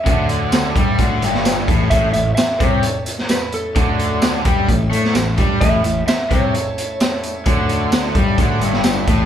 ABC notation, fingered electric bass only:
X:1
M:4/4
L:1/8
Q:1/4=130
K:Amix
V:1 name="Fingered electric bass" clef=bass
D,,3 G,, D,, G,,,2 A,,, | A,,, A,,, z =C,, z4 | D,,3 G,, A,,, A,, A,,, G,, | A,,, A,,, z =C,, z4 |
D,,3 G,, D,, G,,,2 A,,, |]